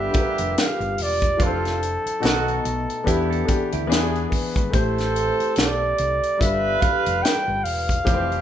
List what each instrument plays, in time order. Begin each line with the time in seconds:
Already playing: horn section D3 B3 G4, grand piano G3 D4 F4 B4, french horn section G3 D4 F4 B4, flugelhorn E5
0.11 grand piano G3 D4 F4 A#4, kick, closed hi-hat
0.20 grand piano B4
0.38 fingered electric bass F1, closed hi-hat
0.54 vibraphone G4, snare, closed hi-hat
0.60 flugelhorn F5
0.80 fingered electric bass G1, closed hi-hat
0.98 fingered electric bass E1, open hi-hat
1.02 flugelhorn D5
1.22 kick, closed hi-hat
1.37 fingered electric bass F1, horn section D3 C4 F4, grand piano F3 D4 E4 B4, french horn section F3 C4, kick, closed hi-hat
1.44 flugelhorn A4, grand piano C5
1.65 snare, closed hi-hat
1.83 closed hi-hat
2.06 muted fingered electric bass stroke, closed hi-hat
2.20 fingered electric bass B1, grand piano B2 B3 D#4 A4, horn section D#3 B3 F#4, french horn section A3 B3 D#4, closed hi-hat
2.25 snare
2.48 closed hi-hat
2.65 fingered electric bass B1, closed hi-hat
2.90 closed hi-hat
3.04 fingered electric bass E2, horn section B2 G3 E4, grand piano E3 B3 D4 G4, french horn section E3 D4 G4, clean electric guitar G4 B4, kick, closed hi-hat
3.30 clean electric guitar A4, closed hi-hat
3.45 grand piano E3 B3 D4 G4, kick, closed hi-hat
3.72 fingered electric bass D2, clean electric guitar E4 G4, closed hi-hat
3.87 fingered electric bass E2, grand piano E3 B3 D4 G#4, horn section E3 D4 G#4, french horn section G#4
3.92 snare, closed hi-hat
4.15 closed hi-hat
4.28 flugelhorn A#4, kick
4.32 flugelhorn B4, open hi-hat
4.56 fingered electric bass G#1, kick, closed hi-hat
4.70 fingered electric bass A1, horn section E3 C4 A4, grand piano A3 E4 G4 C5, french horn section A3 C4 G4, kick, closed hi-hat
4.75 flugelhorn C5
4.98 snare, closed hi-hat
5.16 closed hi-hat
5.40 muted fingered electric bass stroke, closed hi-hat
5.56 fingered electric bass B1, flugelhorn D5, snare, closed hi-hat
5.97 fingered electric bass C2, vibraphone A4, closed hi-hat
6.23 closed hi-hat
6.37 fingered electric bass G1, french horn section D3 G3 F4 B4, grand piano G3 D4 F4 B4, horn section G3 F4 B4, flugelhorn E5, kick
6.42 closed hi-hat
6.79 grand piano G3 D4 F4 B4, vibraphone B4, flugelhorn F5, kick, closed hi-hat
7.06 fingered electric bass F1, vibraphone D5, closed hi-hat
7.23 flugelhorn G5, snare, closed hi-hat
7.48 fingered electric bass G1
7.64 fingered electric bass E1, flugelhorn F5, open hi-hat
7.89 kick, closed hi-hat
8.05 fingered electric bass F1, horn section E3 G3 G4, grand piano E3 F3 C4 C#5, french horn section A3 C4, kick, closed hi-hat
8.14 grand piano C5
8.32 closed hi-hat